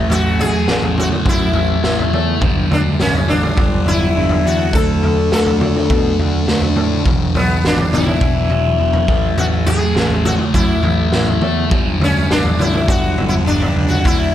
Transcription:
0.00 0.65 A2 medium
0.00 0.66 E3 medium
0.00 0.68 A3 medium
0.10 0.51 A1 medium
0.10 0.40 F#4 loud
0.10 floor tom medium
0.39 0.94 G#4 loud
0.39 floor tom medium
0.67 1.09 A1 medium
0.67 1.52 A2 medium
0.67 1.53 E3 medium
0.67 1.52 A3 medium
0.67 snare medium
0.82 floor tom medium
0.98 1.07 F#4 medium
0.98 mid tom medium
1.12 mid tom medium
1.25 1.46 F#2 medium
1.25 2.10 E4 medium
1.25 kick loud
1.25 floor tom medium
1.53 1.75 A1 medium
1.53 2.11 A2 medium
1.53 2.11 E3 medium
1.53 2.44 A3 medium
1.53 floor tom medium
1.83 2.04 A1 medium
1.83 snare medium
1.99 floor tom medium
2.13 2.34 E2 medium
2.13 mid tom medium
2.41 2.62 G1 medium
2.41 3.26 G2 medium
2.41 3.27 D3 medium
2.41 3.27 G3 medium
2.41 kick loud
2.41 floor tom medium
2.71 2.91 D2 medium
2.71 2.81 D4 medium
2.71 floor tom medium
2.71 mid tom medium
3.00 3.21 A1 medium
3.00 3.29 C#4 medium
3.00 snare medium
3.15 floor tom medium
3.28 3.50 A1 medium
3.28 4.14 G2 medium
3.28 4.14 D3 medium
3.28 4.13 G3 medium
3.28 3.88 D4 medium
3.28 mid tom medium
3.43 mid tom medium
3.57 3.78 G1 medium
3.57 kick loud
3.57 floor tom medium
3.86 4.08 G1 medium
3.86 4.46 E4 medium
3.86 floor tom medium
4.15 4.36 G1 medium
4.15 4.71 G2 medium
4.15 4.72 D3 medium
4.15 4.72 G3 medium
4.29 floor tom medium
4.45 4.66 E2 medium
4.45 4.75 F#4 medium
4.73 5.15 D2 medium
4.73 5.58 D3 medium
4.73 5.59 A3 medium
4.73 5.59 D4 medium
4.73 5.28 A4 loud
4.73 kick loud
4.73 floor tom medium
5.03 floor tom medium
5.32 5.73 D2 medium
5.32 6.44 A4 medium
5.32 snare medium
5.46 floor tom medium
5.60 6.45 D3 medium
5.60 6.46 A3 medium
5.60 6.45 D4 medium
5.60 mid tom medium
5.77 mid tom medium
5.90 6.11 B2 medium
5.90 kick loud
5.90 floor tom medium
6.19 6.40 D2 medium
6.19 floor tom medium
6.47 6.68 D2 medium
6.47 7.03 D3 medium
6.47 7.04 A3 medium
6.47 7.05 D4 medium
6.47 snare medium
6.61 floor tom medium
6.76 6.97 A2 medium
6.76 mid tom medium
7.04 7.26 E1 medium
7.04 7.90 E2 medium
7.04 7.91 B2 medium
7.04 7.90 E3 medium
7.04 kick loud
7.04 floor tom medium
7.35 7.56 B1 medium
7.35 7.65 B3 medium
7.35 floor tom medium
7.35 mid tom medium
7.64 7.84 G#1 medium
7.64 7.95 D4 medium
7.64 snare medium
7.78 floor tom medium
7.91 8.13 G#1 medium
7.91 8.77 E2 medium
7.91 8.78 B2 medium
7.91 8.77 E3 medium
7.91 9.37 E4 medium
7.91 mid tom medium
8.07 mid tom medium
8.21 8.42 E1 medium
8.21 kick loud
8.21 floor tom medium
8.50 8.71 E1 medium
8.50 floor tom medium
8.78 9.01 E1 medium
8.78 9.06 E2 medium
8.78 9.06 B2 medium
8.78 9.06 E3 medium
8.93 floor tom medium
9.06 9.29 A1 medium
9.06 9.93 A2 medium
9.06 9.94 E3 medium
9.06 9.97 A3 medium
9.06 kick loud
9.38 9.80 A1 medium
9.38 9.46 F#4 medium
9.38 floor tom medium
9.66 10.27 G#4 loud
9.66 floor tom medium
9.95 10.37 A1 medium
9.95 10.81 A2 medium
9.95 10.82 E3 medium
9.95 10.82 A3 medium
9.95 snare medium
10.10 floor tom medium
10.25 10.33 F#4 medium
10.25 mid tom medium
10.39 mid tom medium
10.54 10.75 F#2 medium
10.54 11.38 E4 medium
10.54 kick loud
10.54 floor tom medium
10.82 11.05 A1 medium
10.82 11.41 A2 medium
10.82 11.40 E3 medium
10.82 11.73 A3 medium
10.82 floor tom medium
11.12 11.33 A1 medium
11.12 snare medium
11.27 floor tom medium
11.41 11.63 E2 medium
11.41 mid tom medium
11.70 11.92 G1 medium
11.70 12.56 G2 medium
11.70 12.57 D3 medium
11.70 12.57 G3 medium
11.70 kick loud
11.70 floor tom medium
12.00 12.21 D2 medium
12.00 12.31 C#4 medium
12.00 floor tom medium
12.00 mid tom medium
12.30 12.51 A1 medium
12.30 12.61 D4 medium
12.30 snare medium
12.45 floor tom medium
12.58 12.80 A1 medium
12.58 13.44 G2 medium
12.58 13.45 D3 medium
12.58 13.44 G3 medium
12.58 12.89 E4 medium
12.58 mid tom medium
12.74 mid tom medium
12.88 13.09 G1 medium
12.88 13.25 F#4 loud
12.88 kick loud
12.88 floor tom medium
13.18 13.38 G1 medium
13.18 floor tom medium
13.29 13.34 E4 medium
13.45 13.67 G1 medium
13.45 14.02 G2 medium
13.45 14.01 D3 medium
13.45 14.03 G3 medium
13.45 13.87 D4 medium
13.62 floor tom medium
13.75 13.96 C#2 medium
13.88 14.05 F#4 medium
14.02 14.35 D2 medium
14.02 14.35 D3 medium
14.02 14.35 A3 medium
14.02 14.35 D4 medium
14.02 kick loud
14.02 floor tom medium
14.07 14.35 E4 medium

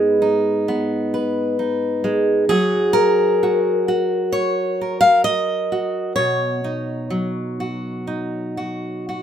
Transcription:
0.00 2.49 G#2 medium
0.00 2.03 G#3 medium
0.00 0.67 B3 soft
0.00 0.21 D#4 soft
0.00 0.67 B4 medium
0.22 1.58 D#4 soft
0.68 2.50 B3 soft
1.14 2.44 B4 soft
1.59 2.50 D#4 soft
2.04 2.44 G#3 medium
2.49 7.09 F#3 medium
2.49 3.42 F#4 soft
2.49 3.87 G#4 medium
2.93 4.78 A#4 loud
3.43 3.88 F#4 medium
3.88 5.71 F#4 medium
4.32 5.00 C#5 medium
4.81 6.13 A#4 soft
5.01 5.24 F5 loud
5.24 6.15 D#5 loud
5.72 6.12 F#4 medium
6.16 9.22 B2 medium
6.16 9.22 C#5 medium
6.64 8.06 D#4 soft
7.10 9.22 F#3 medium
7.60 8.56 F#4 soft
8.07 9.22 D#4 soft
8.57 9.07 F#4 soft
9.09 9.22 F#4 soft

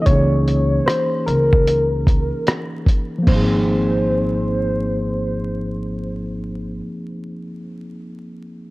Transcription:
0.02 3.21 E3 medium
0.02 3.22 A#3 medium
0.02 0.08 D#5 medium
0.06 0.78 C#2 loud
0.06 3.23 C#4 medium
0.06 3.24 D#4 medium
0.06 0.88 C#5 loud
0.06 kick loud
0.06 closed hi-hat medium
0.12 3.25 G#4 medium
0.48 closed hi-hat medium
0.86 1.28 C5 loud
0.86 cross-stick loud
0.86 closed hi-hat medium
1.27 2.30 C#2 medium
1.27 2.87 A#4 loud
1.27 closed hi-hat medium
1.53 kick medium
1.68 closed hi-hat medium
2.07 kick medium
2.07 closed hi-hat medium
2.47 cross-stick loud
2.47 closed hi-hat medium
2.86 kick medium
2.86 closed hi-hat medium
3.18 6.70 F3 medium
3.23 6.75 A#3 medium
3.27 6.79 G#1 loud
3.27 6.79 C4 medium
3.27 6.80 C5 loud
3.27 kick medium
3.27 crash medium
3.31 6.83 D#4 medium
3.36 6.88 G#4 medium

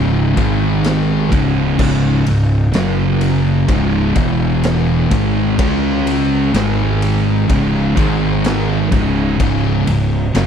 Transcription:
0.00 0.34 C#1 loud
0.00 0.36 C#2 medium
0.00 0.36 G#2 loud
0.00 0.38 C#3 loud
0.36 1.28 G#1 loud
0.36 1.30 G#2 medium
0.36 1.31 D#3 medium
0.36 1.31 G#3 loud
0.36 kick loud
0.36 ride medium
0.84 snare loud
0.84 ride loud
1.31 1.76 C#1 medium
1.31 1.77 C#2 medium
1.31 1.78 G#2 loud
1.31 1.78 C#3 medium
1.31 kick loud
1.31 ride medium
1.78 2.23 C#1 loud
1.78 2.25 C#2 loud
1.78 2.25 G#2 medium
1.78 2.26 C#3 loud
1.78 kick loud
1.78 crash loud
2.26 2.71 C#1 medium
2.26 2.65 C#2 medium
2.26 2.65 G#2 medium
2.26 ride medium
2.73 3.65 F#1 medium
2.73 3.67 F#2 loud
2.73 3.68 C#3 loud
2.73 3.68 F#3 loud
2.73 snare loud
2.73 ride medium
3.21 ride medium
3.68 4.13 C#1 loud
3.68 4.14 C#2 loud
3.68 4.15 G#2 loud
3.68 4.15 C#3 loud
3.68 kick loud
3.68 ride loud
4.15 5.07 E1 loud
4.15 5.10 E2 medium
4.15 5.10 B2 loud
4.15 5.10 E3 medium
4.15 kick loud
4.15 ride medium
4.63 snare loud
4.63 ride loud
5.11 5.55 G#1 loud
5.11 5.57 G#2 medium
5.11 5.57 D#3 medium
5.11 5.57 G#3 loud
5.11 kick loud
5.11 ride medium
5.57 6.50 C#2 medium
5.57 6.52 C#3 medium
5.57 6.52 G#3 medium
5.57 6.53 C#4 loud
5.57 kick loud
5.57 ride loud
6.07 ride medium
6.53 7.45 G#1 loud
6.53 7.47 G#2 loud
6.53 7.48 D#3 loud
6.53 7.48 G#3 loud
6.53 snare loud
6.53 ride loud
7.02 ride medium
7.49 7.93 C#1 medium
7.49 7.97 C#2 loud
7.49 7.97 G#2 loud
7.49 7.99 C#3 loud
7.49 kick loud
7.49 ride loud
7.97 8.88 G#1 medium
7.97 8.90 G#2 medium
7.97 8.91 D#3 loud
7.97 8.91 G#3 loud
7.97 kick loud
7.97 ride medium
8.44 snare loud
8.44 ride loud
8.92 9.36 C#1 loud
8.92 9.38 C#2 loud
8.92 9.39 G#2 loud
8.92 9.39 C#3 loud
8.92 kick loud
8.92 ride medium
9.40 9.84 C#1 medium
9.40 9.86 C#2 loud
9.40 9.87 G#2 loud
9.40 9.87 C#3 loud
9.40 kick loud
9.40 ride loud
9.87 10.31 C#1 medium
9.87 10.26 C#2 medium
9.87 10.26 G#2 medium
9.87 ride medium
10.34 10.47 F#1 loud
10.34 10.47 F#2 medium
10.34 10.47 C#3 loud
10.34 10.47 F#3 loud
10.34 snare loud
10.34 ride loud

